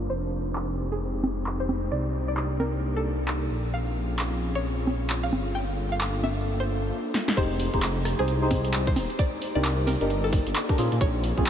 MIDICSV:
0, 0, Header, 1, 6, 480
1, 0, Start_track
1, 0, Tempo, 454545
1, 105, Time_signature, 4, 2, 24, 8
1, 12142, End_track
2, 0, Start_track
2, 0, Title_t, "Synth pluck"
2, 0, Program_c, 0, 84
2, 103, Note_on_c, 0, 72, 90
2, 309, Note_off_c, 0, 72, 0
2, 969, Note_on_c, 0, 68, 87
2, 1096, Note_off_c, 0, 68, 0
2, 1690, Note_on_c, 0, 72, 86
2, 1817, Note_off_c, 0, 72, 0
2, 2023, Note_on_c, 0, 74, 87
2, 2191, Note_off_c, 0, 74, 0
2, 2409, Note_on_c, 0, 74, 86
2, 2536, Note_off_c, 0, 74, 0
2, 2743, Note_on_c, 0, 70, 88
2, 2911, Note_off_c, 0, 70, 0
2, 3131, Note_on_c, 0, 69, 85
2, 3870, Note_off_c, 0, 69, 0
2, 3946, Note_on_c, 0, 77, 89
2, 4150, Note_off_c, 0, 77, 0
2, 4809, Note_on_c, 0, 73, 89
2, 4936, Note_off_c, 0, 73, 0
2, 5526, Note_on_c, 0, 77, 90
2, 5655, Note_off_c, 0, 77, 0
2, 5860, Note_on_c, 0, 79, 91
2, 6029, Note_off_c, 0, 79, 0
2, 6250, Note_on_c, 0, 77, 91
2, 6377, Note_off_c, 0, 77, 0
2, 6585, Note_on_c, 0, 76, 88
2, 6752, Note_off_c, 0, 76, 0
2, 6970, Note_on_c, 0, 72, 87
2, 7304, Note_off_c, 0, 72, 0
2, 7784, Note_on_c, 0, 72, 96
2, 7990, Note_off_c, 0, 72, 0
2, 8648, Note_on_c, 0, 68, 94
2, 8776, Note_off_c, 0, 68, 0
2, 9369, Note_on_c, 0, 72, 94
2, 9496, Note_off_c, 0, 72, 0
2, 9702, Note_on_c, 0, 74, 91
2, 9870, Note_off_c, 0, 74, 0
2, 10089, Note_on_c, 0, 74, 98
2, 10216, Note_off_c, 0, 74, 0
2, 10423, Note_on_c, 0, 70, 89
2, 10591, Note_off_c, 0, 70, 0
2, 10813, Note_on_c, 0, 69, 96
2, 11551, Note_off_c, 0, 69, 0
2, 11626, Note_on_c, 0, 73, 95
2, 11830, Note_off_c, 0, 73, 0
2, 12142, End_track
3, 0, Start_track
3, 0, Title_t, "Synth stab"
3, 0, Program_c, 1, 62
3, 7782, Note_on_c, 1, 67, 99
3, 7783, Note_on_c, 1, 63, 104
3, 7783, Note_on_c, 1, 68, 93
3, 7783, Note_on_c, 1, 72, 116
3, 8111, Note_off_c, 1, 67, 0
3, 8111, Note_off_c, 1, 68, 0
3, 8111, Note_off_c, 1, 72, 0
3, 8112, Note_off_c, 1, 63, 0
3, 8170, Note_on_c, 1, 63, 76
3, 8170, Note_on_c, 1, 67, 73
3, 8170, Note_on_c, 1, 68, 73
3, 8170, Note_on_c, 1, 72, 87
3, 8280, Note_off_c, 1, 63, 0
3, 8280, Note_off_c, 1, 67, 0
3, 8280, Note_off_c, 1, 68, 0
3, 8280, Note_off_c, 1, 72, 0
3, 8649, Note_on_c, 1, 67, 77
3, 8650, Note_on_c, 1, 63, 84
3, 8650, Note_on_c, 1, 68, 73
3, 8651, Note_on_c, 1, 72, 92
3, 8855, Note_off_c, 1, 67, 0
3, 8856, Note_off_c, 1, 63, 0
3, 8856, Note_off_c, 1, 68, 0
3, 8856, Note_off_c, 1, 72, 0
3, 8889, Note_on_c, 1, 67, 87
3, 8889, Note_on_c, 1, 68, 91
3, 8890, Note_on_c, 1, 63, 99
3, 8890, Note_on_c, 1, 72, 115
3, 8999, Note_off_c, 1, 67, 0
3, 8999, Note_off_c, 1, 68, 0
3, 9000, Note_off_c, 1, 63, 0
3, 9000, Note_off_c, 1, 72, 0
3, 10090, Note_on_c, 1, 62, 76
3, 10090, Note_on_c, 1, 63, 65
3, 10090, Note_on_c, 1, 70, 81
3, 10091, Note_on_c, 1, 67, 68
3, 10155, Note_off_c, 1, 62, 0
3, 10155, Note_off_c, 1, 63, 0
3, 10155, Note_off_c, 1, 70, 0
3, 10156, Note_off_c, 1, 67, 0
3, 10569, Note_on_c, 1, 62, 88
3, 10569, Note_on_c, 1, 63, 85
3, 10569, Note_on_c, 1, 70, 102
3, 10570, Note_on_c, 1, 67, 82
3, 10635, Note_off_c, 1, 62, 0
3, 10635, Note_off_c, 1, 63, 0
3, 10635, Note_off_c, 1, 67, 0
3, 10635, Note_off_c, 1, 70, 0
3, 11290, Note_on_c, 1, 63, 81
3, 11290, Note_on_c, 1, 67, 78
3, 11290, Note_on_c, 1, 70, 95
3, 11291, Note_on_c, 1, 62, 88
3, 11355, Note_off_c, 1, 63, 0
3, 11355, Note_off_c, 1, 67, 0
3, 11356, Note_off_c, 1, 62, 0
3, 11356, Note_off_c, 1, 70, 0
3, 11385, Note_on_c, 1, 60, 89
3, 11385, Note_on_c, 1, 61, 83
3, 11385, Note_on_c, 1, 68, 102
3, 11386, Note_on_c, 1, 65, 82
3, 11486, Note_off_c, 1, 60, 0
3, 11486, Note_off_c, 1, 61, 0
3, 11486, Note_off_c, 1, 65, 0
3, 11486, Note_off_c, 1, 68, 0
3, 12011, Note_on_c, 1, 68, 86
3, 12012, Note_on_c, 1, 60, 81
3, 12012, Note_on_c, 1, 61, 72
3, 12012, Note_on_c, 1, 65, 73
3, 12120, Note_off_c, 1, 68, 0
3, 12121, Note_off_c, 1, 60, 0
3, 12121, Note_off_c, 1, 61, 0
3, 12121, Note_off_c, 1, 65, 0
3, 12142, End_track
4, 0, Start_track
4, 0, Title_t, "Analog synth pad"
4, 0, Program_c, 2, 89
4, 105, Note_on_c, 2, 60, 72
4, 107, Note_on_c, 2, 56, 75
4, 108, Note_on_c, 2, 63, 72
4, 108, Note_on_c, 2, 67, 81
4, 2006, Note_off_c, 2, 60, 0
4, 2007, Note_off_c, 2, 56, 0
4, 2007, Note_off_c, 2, 67, 0
4, 2027, Note_on_c, 2, 58, 76
4, 2027, Note_on_c, 2, 62, 74
4, 2028, Note_on_c, 2, 67, 86
4, 3670, Note_off_c, 2, 63, 0
4, 3689, Note_off_c, 2, 58, 0
4, 3689, Note_off_c, 2, 62, 0
4, 3689, Note_off_c, 2, 67, 0
4, 3706, Note_on_c, 2, 61, 73
4, 3707, Note_on_c, 2, 65, 74
4, 3709, Note_on_c, 2, 60, 75
4, 3709, Note_on_c, 2, 68, 89
4, 5606, Note_off_c, 2, 61, 0
4, 5608, Note_off_c, 2, 60, 0
4, 5608, Note_off_c, 2, 68, 0
4, 5621, Note_on_c, 2, 69, 92
4, 5623, Note_on_c, 2, 58, 78
4, 5623, Note_on_c, 2, 62, 77
4, 7745, Note_off_c, 2, 65, 0
4, 7761, Note_off_c, 2, 69, 0
4, 7762, Note_off_c, 2, 58, 0
4, 7762, Note_off_c, 2, 62, 0
4, 7783, Note_on_c, 2, 63, 78
4, 7783, Note_on_c, 2, 67, 92
4, 7784, Note_on_c, 2, 56, 86
4, 7784, Note_on_c, 2, 60, 76
4, 9685, Note_off_c, 2, 56, 0
4, 9685, Note_off_c, 2, 60, 0
4, 9685, Note_off_c, 2, 63, 0
4, 9706, Note_on_c, 2, 62, 72
4, 9707, Note_on_c, 2, 58, 81
4, 9708, Note_on_c, 2, 63, 78
4, 11348, Note_off_c, 2, 67, 0
4, 11369, Note_off_c, 2, 58, 0
4, 11369, Note_off_c, 2, 62, 0
4, 11370, Note_off_c, 2, 63, 0
4, 11386, Note_on_c, 2, 60, 87
4, 11386, Note_on_c, 2, 61, 76
4, 11386, Note_on_c, 2, 65, 78
4, 11386, Note_on_c, 2, 68, 94
4, 12142, Note_off_c, 2, 60, 0
4, 12142, Note_off_c, 2, 61, 0
4, 12142, Note_off_c, 2, 65, 0
4, 12142, Note_off_c, 2, 68, 0
4, 12142, End_track
5, 0, Start_track
5, 0, Title_t, "Detuned saw bass"
5, 0, Program_c, 3, 39
5, 105, Note_on_c, 3, 29, 83
5, 2006, Note_off_c, 3, 29, 0
5, 2024, Note_on_c, 3, 36, 82
5, 3686, Note_off_c, 3, 36, 0
5, 3704, Note_on_c, 3, 34, 84
5, 5605, Note_off_c, 3, 34, 0
5, 5624, Note_on_c, 3, 31, 85
5, 7304, Note_off_c, 3, 31, 0
5, 7783, Note_on_c, 3, 29, 99
5, 8118, Note_off_c, 3, 29, 0
5, 8170, Note_on_c, 3, 29, 96
5, 8599, Note_off_c, 3, 29, 0
5, 8651, Note_on_c, 3, 36, 83
5, 9465, Note_on_c, 3, 27, 89
5, 9481, Note_off_c, 3, 36, 0
5, 9578, Note_off_c, 3, 27, 0
5, 10090, Note_on_c, 3, 36, 97
5, 10519, Note_off_c, 3, 36, 0
5, 10570, Note_on_c, 3, 31, 80
5, 10999, Note_off_c, 3, 31, 0
5, 11051, Note_on_c, 3, 31, 101
5, 11124, Note_off_c, 3, 31, 0
5, 11385, Note_on_c, 3, 46, 82
5, 11498, Note_off_c, 3, 46, 0
5, 11531, Note_on_c, 3, 46, 102
5, 11604, Note_off_c, 3, 46, 0
5, 11626, Note_on_c, 3, 34, 98
5, 11959, Note_off_c, 3, 34, 0
5, 12013, Note_on_c, 3, 34, 96
5, 12142, Note_off_c, 3, 34, 0
5, 12142, End_track
6, 0, Start_track
6, 0, Title_t, "Drums"
6, 584, Note_on_c, 9, 39, 105
6, 690, Note_off_c, 9, 39, 0
6, 1304, Note_on_c, 9, 63, 75
6, 1409, Note_off_c, 9, 63, 0
6, 1544, Note_on_c, 9, 39, 109
6, 1650, Note_off_c, 9, 39, 0
6, 1783, Note_on_c, 9, 63, 73
6, 1889, Note_off_c, 9, 63, 0
6, 2503, Note_on_c, 9, 39, 94
6, 2608, Note_off_c, 9, 39, 0
6, 2742, Note_on_c, 9, 63, 56
6, 2848, Note_off_c, 9, 63, 0
6, 3462, Note_on_c, 9, 39, 101
6, 3568, Note_off_c, 9, 39, 0
6, 4423, Note_on_c, 9, 39, 99
6, 4528, Note_off_c, 9, 39, 0
6, 5144, Note_on_c, 9, 63, 72
6, 5250, Note_off_c, 9, 63, 0
6, 5383, Note_on_c, 9, 39, 100
6, 5489, Note_off_c, 9, 39, 0
6, 5624, Note_on_c, 9, 63, 73
6, 5729, Note_off_c, 9, 63, 0
6, 6343, Note_on_c, 9, 39, 99
6, 6448, Note_off_c, 9, 39, 0
6, 6582, Note_on_c, 9, 63, 52
6, 6688, Note_off_c, 9, 63, 0
6, 7542, Note_on_c, 9, 38, 78
6, 7648, Note_off_c, 9, 38, 0
6, 7688, Note_on_c, 9, 38, 89
6, 7783, Note_on_c, 9, 36, 115
6, 7783, Note_on_c, 9, 42, 67
6, 7783, Note_on_c, 9, 49, 103
6, 7794, Note_off_c, 9, 38, 0
6, 7889, Note_off_c, 9, 36, 0
6, 7889, Note_off_c, 9, 42, 0
6, 7889, Note_off_c, 9, 49, 0
6, 8022, Note_on_c, 9, 46, 113
6, 8128, Note_off_c, 9, 46, 0
6, 8170, Note_on_c, 9, 36, 65
6, 8262, Note_on_c, 9, 39, 117
6, 8262, Note_on_c, 9, 42, 62
6, 8275, Note_off_c, 9, 36, 0
6, 8368, Note_off_c, 9, 39, 0
6, 8368, Note_off_c, 9, 42, 0
6, 8503, Note_on_c, 9, 37, 66
6, 8503, Note_on_c, 9, 46, 102
6, 8609, Note_off_c, 9, 37, 0
6, 8609, Note_off_c, 9, 46, 0
6, 8649, Note_on_c, 9, 42, 34
6, 8743, Note_off_c, 9, 42, 0
6, 8743, Note_on_c, 9, 42, 68
6, 8849, Note_off_c, 9, 42, 0
6, 8984, Note_on_c, 9, 36, 105
6, 8984, Note_on_c, 9, 46, 115
6, 8984, Note_on_c, 9, 63, 75
6, 9089, Note_off_c, 9, 36, 0
6, 9089, Note_off_c, 9, 46, 0
6, 9089, Note_off_c, 9, 63, 0
6, 9130, Note_on_c, 9, 42, 64
6, 9225, Note_off_c, 9, 42, 0
6, 9225, Note_on_c, 9, 39, 120
6, 9225, Note_on_c, 9, 42, 64
6, 9331, Note_off_c, 9, 39, 0
6, 9331, Note_off_c, 9, 42, 0
6, 9369, Note_on_c, 9, 36, 109
6, 9464, Note_on_c, 9, 46, 109
6, 9464, Note_on_c, 9, 63, 76
6, 9475, Note_off_c, 9, 36, 0
6, 9569, Note_off_c, 9, 46, 0
6, 9569, Note_off_c, 9, 63, 0
6, 9610, Note_on_c, 9, 42, 37
6, 9703, Note_on_c, 9, 36, 124
6, 9704, Note_off_c, 9, 42, 0
6, 9704, Note_on_c, 9, 42, 61
6, 9809, Note_off_c, 9, 36, 0
6, 9810, Note_off_c, 9, 42, 0
6, 9945, Note_on_c, 9, 46, 107
6, 10050, Note_off_c, 9, 46, 0
6, 10185, Note_on_c, 9, 39, 120
6, 10185, Note_on_c, 9, 42, 61
6, 10291, Note_off_c, 9, 39, 0
6, 10291, Note_off_c, 9, 42, 0
6, 10426, Note_on_c, 9, 46, 110
6, 10426, Note_on_c, 9, 63, 57
6, 10532, Note_off_c, 9, 46, 0
6, 10532, Note_off_c, 9, 63, 0
6, 10571, Note_on_c, 9, 42, 35
6, 10666, Note_off_c, 9, 42, 0
6, 10666, Note_on_c, 9, 42, 64
6, 10772, Note_off_c, 9, 42, 0
6, 10905, Note_on_c, 9, 36, 113
6, 10905, Note_on_c, 9, 46, 111
6, 11010, Note_off_c, 9, 36, 0
6, 11011, Note_off_c, 9, 46, 0
6, 11052, Note_on_c, 9, 42, 62
6, 11146, Note_off_c, 9, 42, 0
6, 11146, Note_on_c, 9, 39, 127
6, 11146, Note_on_c, 9, 42, 63
6, 11252, Note_off_c, 9, 39, 0
6, 11252, Note_off_c, 9, 42, 0
6, 11291, Note_on_c, 9, 36, 112
6, 11385, Note_on_c, 9, 46, 110
6, 11396, Note_off_c, 9, 36, 0
6, 11490, Note_off_c, 9, 46, 0
6, 11531, Note_on_c, 9, 42, 37
6, 11626, Note_on_c, 9, 36, 118
6, 11627, Note_off_c, 9, 42, 0
6, 11627, Note_on_c, 9, 42, 61
6, 11731, Note_off_c, 9, 36, 0
6, 11733, Note_off_c, 9, 42, 0
6, 11866, Note_on_c, 9, 46, 98
6, 11971, Note_off_c, 9, 46, 0
6, 12012, Note_on_c, 9, 36, 65
6, 12106, Note_on_c, 9, 39, 121
6, 12106, Note_on_c, 9, 42, 64
6, 12117, Note_off_c, 9, 36, 0
6, 12142, Note_off_c, 9, 39, 0
6, 12142, Note_off_c, 9, 42, 0
6, 12142, End_track
0, 0, End_of_file